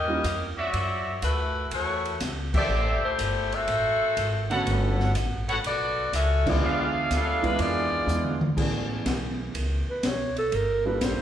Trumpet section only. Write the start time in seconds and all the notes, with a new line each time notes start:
0.58 F#4 C#5 D5 E5
2.54 G4 A4 C5 E5
4.50 A4 B4 C#5 F#5
5.49 A4 B4 C#5 F#5
6.62 G#4 D5 E5 F5